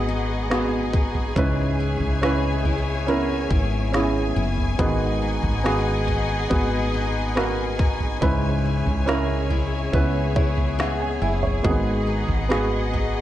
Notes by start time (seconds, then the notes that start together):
Already playing: G#1 G#2 B3 F#4 G#4 A#4 D#5 F#5 G#5
0.08 D#4
0.50 B3 F#4 G#4, snare
0.93 D#4, kick
1.15 floor tom
1.36 C#2 G#2 C#3 C#4 E4 B4 C#5 E5, kick, floor tom
1.80 E4
2.00 C#2, floor tom
2.22 C#4 E4 G#4 B4, snare
2.65 E4, floor tom
3.07 B3 C#4 E4 A#4
3.50 G#1 E4, kick
3.92 B3 C#4 E4 G#4, snare
4.36 F#1 E4
4.58 floor tom
4.79 G#1 G#2 D#3 B3 F#4 G#4 D#5 F#5, kick, floor tom
5.22 D#4
5.43 G#1, floor tom
5.64 B3 F#4 G#4, snare
6.07 D#4, floor tom
6.50 G#1 B3 F#4 G#4, kick
6.94 D#4
7.36 B3 F#4 A#4, snare
7.79 D#4, kick
8.00 floor tom
8.21 C#2 G#2 C#3 C#4 E4 G#4 B4 C#5 E5, kick, floor tom
8.65 E4
8.86 C#2, floor tom
9.06 C#4 E4 G#4 A#4, snare
9.50 E4, floor tom
9.92 C#2 B3 C#4 E4 B4, kick
10.36 E4 C#5, kick
10.58 floor tom
10.79 B3 E5, snare
11.00 G#5
11.22 F#1 E4 E5 G#5
11.43 C#5, floor tom
11.63 G#1 G#2 D#3 A#3 F#4 G#4 D#5 F#5, kick, floor tom
11.69 B3
12.07 D#4
12.28 G#1, floor tom
12.49 B3 F#4 G#4, snare
12.93 D#4, floor tom